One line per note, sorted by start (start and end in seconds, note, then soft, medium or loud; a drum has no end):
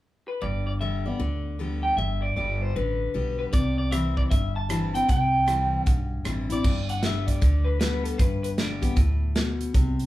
0.28 0.43 B4 medium
0.42 1.10 G1 medium
0.42 1.17 G2 medium
0.42 0.66 D5 medium
0.67 0.72 D5 medium
0.81 1.05 D3 soft
0.81 1.05 G3 soft
0.81 1.05 B3 soft
0.81 1.04 G4 medium
0.81 1.06 E5 medium
1.06 1.20 B3 soft
1.06 1.20 G4 soft
1.06 1.83 D5 medium
1.19 1.88 D2 medium
1.19 1.58 D3 medium
1.59 1.97 D3 soft
1.59 1.97 G3 medium
1.59 1.97 B3 medium
1.59 1.97 G4 medium
1.83 1.97 G5 medium
1.97 2.31 G1 medium
1.97 2.73 G2 medium
1.97 2.23 E5 medium
2.22 2.35 D5 medium
2.36 2.69 G1 medium
2.36 2.74 D3 medium
2.36 2.74 G3 soft
2.36 2.75 B3 medium
2.36 2.75 G4 soft
2.36 2.62 D5 medium
2.62 2.75 C5 medium
2.76 3.09 A1 medium
2.76 3.13 D3 medium
2.76 3.38 B4 medium
3.14 3.48 B1 medium
3.14 3.52 D3 soft
3.14 3.52 G3 medium
3.14 3.52 B3 medium
3.14 3.52 G4 medium
3.39 3.44 B4 medium
3.53 4.21 C2 medium
3.53 4.28 C3 medium
3.53 3.77 D5 medium
3.53 kick loud
3.53 closed hi-hat medium
3.78 3.91 D5 medium
3.91 4.29 E3 soft
3.91 4.29 G3 soft
3.91 4.30 C4 medium
3.91 4.30 E4 medium
3.91 4.16 E5 medium
3.91 cross-stick medium
3.91 closed hi-hat medium
4.17 4.22 D5 medium
4.17 kick medium
4.31 4.99 G1 medium
4.31 5.06 G2 medium
4.31 4.56 E5 medium
4.31 kick medium
4.31 closed hi-hat medium
4.56 4.94 A5 medium
4.69 4.93 E3 medium
4.69 4.93 G3 medium
4.69 4.94 C4 medium
4.69 4.93 E4 medium
4.69 cross-stick medium
4.69 closed hi-hat medium
4.94 5.09 C4 soft
4.94 5.08 E4 medium
4.94 5.08 G5 medium
4.94 closed hi-hat medium
5.08 5.77 C2 medium
5.08 5.83 C3 medium
5.08 5.83 G5 medium
5.08 kick loud
5.08 closed hi-hat medium
5.46 5.84 E3 medium
5.46 5.85 G3 medium
5.46 5.85 C4 medium
5.46 5.85 E4 medium
5.46 cross-stick medium
5.46 closed hi-hat medium
5.83 6.20 B1 medium
5.83 6.61 G2 medium
5.83 6.21 F#5 medium
5.83 kick loud
5.83 closed hi-hat medium
6.24 6.58 A1 medium
6.24 6.48 E3 medium
6.24 6.49 G3 medium
6.24 6.49 C4 medium
6.24 6.49 E4 medium
6.24 cross-stick loud
6.24 closed hi-hat soft
6.50 6.64 C4 soft
6.50 6.63 E4 medium
6.50 6.87 D5 medium
6.50 closed hi-hat medium
6.64 7.32 G1 medium
6.64 7.39 G2 medium
6.64 kick loud
6.64 crash medium
6.89 7.04 F#5 medium
6.89 closed hi-hat soft
7.02 7.40 D3 soft
7.02 7.40 G3 soft
7.02 7.40 B3 soft
7.02 7.41 G4 medium
7.02 7.27 E5 medium
7.02 snare medium
7.02 closed hi-hat medium
7.27 7.67 D5 medium
7.27 kick medium
7.27 closed hi-hat medium
7.41 8.10 D2 medium
7.41 7.79 D3 medium
7.41 kick medium
7.41 closed hi-hat medium
7.64 7.78 B4 medium
7.80 8.17 D3 medium
7.80 8.18 G3 soft
7.80 8.18 B3 medium
7.80 8.18 G4 medium
7.80 8.04 B4 medium
7.80 snare loud
7.80 closed hi-hat medium
8.04 8.18 A4 medium
8.04 closed hi-hat medium
8.18 8.87 G1 medium
8.18 8.94 G2 medium
8.18 8.42 B4 medium
8.18 kick loud
8.18 closed hi-hat medium
8.43 8.48 B4 medium
8.43 closed hi-hat medium
8.58 8.81 D3 medium
8.58 8.82 G3 medium
8.58 8.82 B3 medium
8.58 8.81 G4 medium
8.58 8.97 D5 medium
8.58 snare medium
8.58 closed hi-hat medium
8.82 8.96 B3 soft
8.82 8.96 G4 medium
8.82 kick medium
8.82 closed hi-hat soft
8.96 9.64 D2 medium
8.96 9.34 A2 medium
8.96 kick loud
8.96 closed hi-hat medium
9.35 9.73 B2 medium
9.35 snare loud
9.35 closed hi-hat medium
9.61 closed hi-hat medium
9.74 10.06 C2 medium
9.74 10.06 C3 medium
9.74 kick loud
9.74 closed hi-hat medium
9.99 closed hi-hat soft